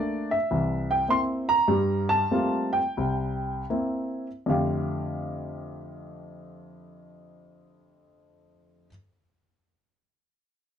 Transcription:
Already playing: A3 A#3 D4 D5
0.31 E5
0.51 C2 E3
0.91 G5
1.08 A#3 C4 E4 C6
1.49 A#5
1.68 G2 G3
2.09 A5
2.31 G3 A3 A#3 C4 F4
2.73 G5
2.97 C2
3.70 A#3 C4 E4
4.46 F2 D3 A3 G4 F5

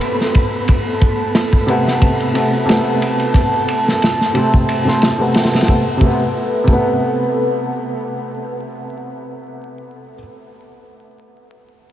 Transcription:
Already playing: B3 A4 B4 B5
0.01 ride, tambourine
0.20 snare, tambourine
0.34 kick, ride
0.54 tambourine
0.67 A5, kick, ride, tambourine
0.86 tambourine
1.02 kick, ride
1.20 tambourine
1.35 snare, ride, tambourine
1.53 kick, tambourine
1.67 C3 A3 B3, ride
1.87 snare, tambourine
2.01 kick, ride, tambourine
2.19 ride, tambourine
2.34 C3 A3 B3, ride
2.53 tambourine
2.65 C3 A3, ride, tambourine
2.70 B3, snare
2.86 tambourine
3.02 ride
3.19 ride, tambourine
3.34 kick, ride, tambourine
3.53 tambourine
3.68 ride
3.85 snare, tambourine
4.01 snare, ride, tambourine
4.19 snare, tambourine
4.34 C3 A3 C4, ride
4.54 kick, tambourine
4.68 ride, tambourine
4.85 C3 A3 C4, snare, tambourine
5.02 snare, ride
5.18 C3 A3 B3, tambourine
5.34 snare, ride, tambourine
5.43 snare, ride
5.52 snare, ride, tambourine
5.61 snare, ride
5.67 C3 A3 B3, kick, ride
5.86 tambourine
5.97 C3, kick
6.01 A3 A4 B4
6.06 B3
6.64 C3, kick
6.68 A3
6.73 B3

